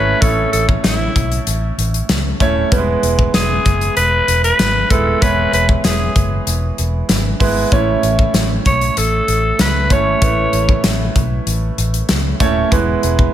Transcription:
Already playing: G#1 A3 C#4 E4 B4 C#5
0.21 A1 A2 A3 C#4 E4 A4 C#5, kick, closed hi-hat
0.52 A1 A4, closed hi-hat
0.69 kick
0.83 A1 E4, snare, clap, closed hi-hat
1.15 B1, kick, closed hi-hat
1.32 closed hi-hat
1.47 A1, closed hi-hat
1.78 A1, closed hi-hat
1.94 closed hi-hat
2.09 C#2, snare, clap, closed hi-hat
2.40 D#1 A3 C#4 E4 C#5, kick, closed hi-hat
2.72 E1 E3 G3 B3 E4 B4, kick, closed hi-hat
2.78 G#3
3.03 E1, closed hi-hat
3.19 kick
3.34 E1 G#4, snare, clap, closed hi-hat
3.66 F#1, kick, clap, closed hi-hat
3.81 closed hi-hat
3.96 E1 B4, closed hi-hat
4.28 E1, closed hi-hat
4.44 B4, closed hi-hat
4.59 G#1, snare, clap, closed hi-hat
4.90 D#1 G#3 B3 E4 A4 B4, kick, closed hi-hat
5.21 E1 E3 G#3 B3 E4 B4 C#5, kick, closed hi-hat
5.53 E1 B4, closed hi-hat
5.69 kick
5.84 E1 G#4, snare, clap, closed hi-hat, tambourine
6.16 F#1, kick, closed hi-hat
6.47 E1, closed hi-hat
6.78 E1, closed hi-hat
7.09 G#1, snare, clap, closed hi-hat, tambourine
7.40 G#1 G#3 B3 E4 B4, kick, open hi-hat
7.72 A1 A2 A3 C#4 E4 C#5, kick, closed hi-hat
8.03 A1, closed hi-hat
8.19 kick
8.34 A1, snare, clap, closed hi-hat, tambourine
8.66 B1 C#5, kick, clap, closed hi-hat
8.81 closed hi-hat
8.97 A1 A4, closed hi-hat
9.28 A1, closed hi-hat
9.59 C#2 B4, snare, clap, closed hi-hat, tambourine
9.90 G#1 A3 C#4 E4 C#5, kick, closed hi-hat
10.22 A1 A2 A3 C#4 E4 B4, kick, closed hi-hat
10.53 A1, closed hi-hat
10.69 kick
10.84 A1, snare, clap, closed hi-hat, tambourine
11.15 B1, kick, closed hi-hat
11.46 A1, closed hi-hat
11.78 A1, closed hi-hat
11.94 closed hi-hat
12.09 C#2, snare, clap, closed hi-hat, tambourine
12.40 D#1 A3 C#4 E4 C#5, kick, closed hi-hat
12.71 E1 E3 G#3 B3 E4 B4, kick, closed hi-hat
13.03 E1, closed hi-hat
13.19 kick

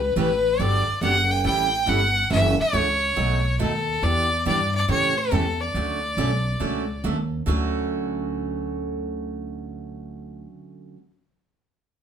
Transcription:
Already playing: C#2 B4
0.16 A1 C#3 E3 A3 C#4 G4 B4
0.59 G1 D3 F#3 B3 D4 G4 D5
0.87 muted upright bass stroke
1.01 F#1 D3 F#3 B3 D4 G4 F#5
1.31 G5
1.44 A1 E3 G3 C#4 E4 A4 G5
1.86 G1 E3 G3 C#4 E4 A4 F#5
2.30 F#1 C#3 E3 A3 C#4 F#4 E5
2.60 C#5, muted upright bass stroke
2.73 C#2 C#3 E3 A3 C#4 F#4
3.16 B1 B2 F#3 A3 D#4 F#4
3.59 D#2 B2 F#3 A3 D#4 F#4 A4
4.02 E2 E3 B3 D4 G4 D5
4.45 G2 E3 B3 D4 G4 D5
4.75 D5
4.88 A2 C#3 E3 A3 C#4 G4 C#5
5.17 A4
5.31 E2 C#3 E3 A3 C#4 G4
5.61 D5
5.74 D2 D3 F#3 A3 C#4 F#4
6.17 B1 D3 F#3 A3 C#4 F#4
6.60 C#2 D3 F#3 A3 C#4 F#4
7.04 D#2 D3 F#3 A3 C#4 F#4
7.46 D2 D3 F#3 A3 C#4 F#4

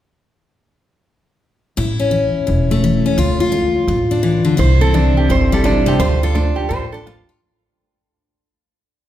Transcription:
1.77 A1 A2 E4
1.99 C#4
2.11 E3
2.47 E1 E2
2.71 A3
2.84 E3
3.06 C#4
3.17 D2 D3 F4
3.40 F4
3.52 A3
3.88 A1 A2
4.11 D4
4.23 E3
4.45 D3
4.57 C2 C3 E4 C5
4.81 C4 A4
4.94 E3 D4
5.17 G4
5.29 G1 G2 C5
5.52 G3 A4
5.64 A#2 D4
5.86 C3 G4
5.99 D2 D3 F4 C5
6.23 F4 A4
6.35 A3 D4
6.56 G4
6.69 A1 A2 C5
6.92 D4 A4
7.07 A3 F4
7.29 F4

